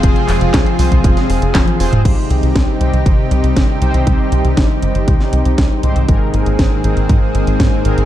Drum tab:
CC |----------------|x---------------|----------------|----------------|
HH |xxoxxxoxxxoxxxox|x-xxx-xxx-xxx-xx|x-xxx-xxx-xxx-xx|x-xxx-xxx-xxx-xx|
CP |--x-x-------x---|----------------|----------------|----------------|
SD |----o----o--o---|----o-------o---|----o----o--o---|----o-------o---|
T1 |------------oo--|----------------|----------------|----------------|
T2 |---------------o|----------------|----------------|----------------|
BD |o---o--oo---o---|o---o---o---o---|o---o---o---o---|o---o---o---o---|